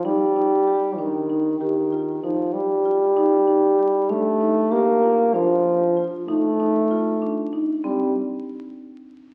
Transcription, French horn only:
\new Staff \with { instrumentName = "French horn" } { \clef bass \time 5/8 \key ees \lydian \tempo 4 = 96 g4. ees4 | ees4 f8 g4~ | g4. a4 | bes4 f4 r8 |
a2 r8 | g8 r2 | }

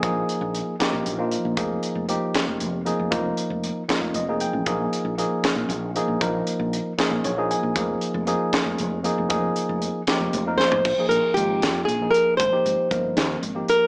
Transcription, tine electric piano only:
\new Staff \with { instrumentName = "Tine electric piano" } { \time 6/8 \key f \minor \tempo 4. = 78 << { r2. | r2. | r2 ees''8 g''8 | r2. |
r2 des''8 aes''8 | r2. | r2. | r2. |
r2. | } \\ { <f bes ees' aes'>4. <f bes ees' g'>8. <f bes ees' f'>8. | <f bes ees' aes'>4 <f bes ees' g'>4. <f bes ees' aes'>8 | <f bes ees' f'>4. <f bes ees' f'>8. <f bes ees' aes'>8. | <f bes ees' aes'>4 <f bes ees' aes'>4. <f bes ees' aes'>8 |
<f bes ees' bes'>4. <f bes ees' aes'>8. <f bes ees' aes'>8. | <f bes ees' aes'>4 <f bes ees' aes'>4. <f bes ees' aes'>8 | <f bes ees' aes'>4. <f bes ees' g'>8. <f bes ees' bes'>8. | r16 <f bes ees' aes'>8. <f bes ees' f'>4~ <f bes ees' f'>16 <f bes ees' aes'>8. |
r16 <f bes ees' g'>8. <f bes ees' bes'>4~ <f bes ees' bes'>16 <f bes ees' g'>8. | } >> }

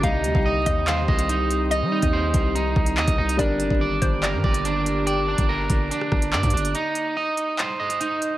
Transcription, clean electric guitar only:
\new Staff \with { instrumentName = "Clean electric guitar" } { \time 4/4 \key c \minor \tempo 4 = 143 ees'4 ees''4 c''8 ees''8 ees'4 | ees''8 ees'8 c''4 ees'4 ees''8 ees'8 | d'4 d''4 bes'8 d''8 d'4 | d''8 d'8 bes'4 d'4 d''8 d'8 |
ees'4 ees''4 c''8 ees''8 ees'4 | }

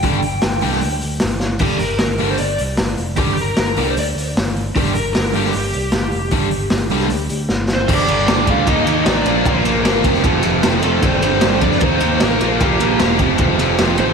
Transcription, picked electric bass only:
\new Staff \with { instrumentName = "Picked electric bass" } { \clef bass \time 4/4 \key g \minor \tempo 4 = 153 g,,4 g,,8 c,8 d,8 d,8 g,,4 | g,,8 g,,8 g,,8 g,,8 g,,8 c,8 g,,8 f,,8 | g,,4 g,,8 c,8 d,8 d,8 g,,4 | g,,8 g,,8 g,,8 g,,8 g,,8 c,8 g,,8 f,,8 |
g,,4 g,,8 c,8 d,8 d,8 g,,4 | g,,8 g,,8 g,,8 d,8 ees,8 ees,8 a,,8 bes,,8 | bes,,8 bes,,8 g,,8 f,,8 f,,8 f,,8 f,,8 f,,8 | g,,8 g,,8 g,,8 f,8 ees,8 ees,8 a,,8 bes,,8 |
bes,,8 bes,,8 e,,8 f,,8 f,,8 f,,8 f,,8 a,,8 | }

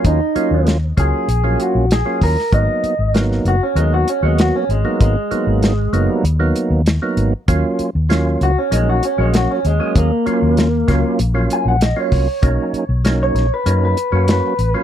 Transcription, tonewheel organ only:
\new Staff \with { instrumentName = "Tonewheel organ" } { \time 4/4 \key ees \minor \tempo 4 = 97 <ges bes des' f'>16 r16 <ges bes des' f'>8. r16 <ges bes des' f'>8 r16 <ges bes des' f'>8. r16 <ges bes des' f'>8 r16 | <ges bes ces' ees'>8. r16 <ges bes ces' ees'>8. r16 <ges bes ces' ees'>8 r16 <ges bes ces' ges'>8. r16 <ges bes ces' ees'>16~ | <ges bes ces' ees'>16 r16 <ges bes ces' ees'>8. r16 <ges bes ces' ees'>8 r16 <ges bes ces' ees'>8. r16 <ges bes ces' ees'>8 r16 | <ges bes des' f'>8. r16 <ges bes des' f'>8. r16 <ges bes des' ees'>8 r16 <ges bes des' ges'>8. r16 <ges bes des' aes'>16~ |
<ges bes des' aes'>16 r16 <ges bes des' f'>8. r16 <ges bes des' f'>8 r16 <ges bes des' f'>8. r16 <ges bes des' f'>8 r16 | <fis ais des' dis'>8. r16 <fis ais des' dis'>8. r16 <fis ais des' dis'>8 r16 <fis ais des' fis'>8. r16 <fis ais des' f'>16 | }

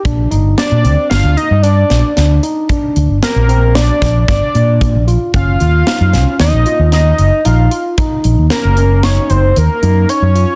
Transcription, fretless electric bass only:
\new Staff \with { instrumentName = "Fretless electric bass" } { \clef bass \time 5/4 \key bes \mixolydian \tempo 4 = 114 bes,,8 g,,8 r16 bes,16 d,16 r16 g,,16 d,16 r16 g,8. bes,,16 r16 d,8 r8 | r8 d,16 g,,16 r16 bes,,4~ bes,,16 bes,,8 g,,16 r16 bes,8. bes,,8 r16 | ges,,8 ees,8 r16 ges,16 c,16 r16 ees,16 bes,,16 r16 ees,8. ges,,16 r16 bes,,8 r8 | r8 bes,,16 ees,16 r16 ges,,4~ ges,,16 ges,,8 ees,16 r16 ges,8 r16 ges,8 r16 | }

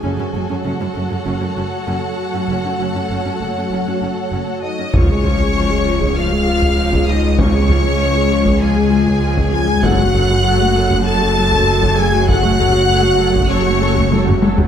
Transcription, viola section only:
\new Staff \with { instrumentName = "Viola section" } { \time 4/4 \key cis \minor \tempo 4 = 98 << { fis'1~ | fis'2.~ fis'8. r16 | eis'16 gis'16 eis'16 gis'16 eis'16 gis'16 eis'16 gis'16 eis'16 gis'16 eis'16 gis'16 eis'16 gis'16 eis'16 gis'16 | eis'16 gis'16 eis'16 gis'16 eis'16 gis'16 eis'16 gis'16 eis'16 gis'16 eis'16 gis'16 eis'16 gis'16 eis'16 gis'16 |
a'16 fis'16 a'16 fis'16 a'16 fis'16 a'16 fis'16 a'16 fis'16 a'16 fis'16 a'16 fis'16 a'16 fis'16 | a'16 fis'16 a'16 fis'16 a'16 fis'16 a'16 fis'16 a'16 fis'16 a'16 fis'16 a'16 fis'16 a'16 fis'16 | } \\ { cis'16 cis'16 cis'16 cis'16 cis'16 cis'16 cis'16 cis'16 cis'16 cis'16 cis'16 r16 cis'16 r8 cis'16 | cis'16 cis'16 cis'16 cis'16 cis'16 cis'16 cis'16 cis'16 cis'16 cis'16 cis'16 r16 cis'16 r8 cis'16 | eis16 gis16 eis16 gis16 eis16 gis16 eis16 gis16 eis16 gis16 eis16 gis16 eis16 gis16 eis16 gis16 | eis16 gis16 eis16 gis16 eis16 gis16 eis16 gis16 eis16 gis16 eis16 gis16 eis16 gis16 eis16 gis16 |
fis16 a16 fis16 a16 fis16 a16 fis16 a16 fis16 a16 fis16 a16 fis16 a16 fis16 a16 | fis16 a16 fis16 a16 fis16 a16 fis16 a16 fis16 a16 fis16 a16 fis16 a16 fis16 a16 | } >> }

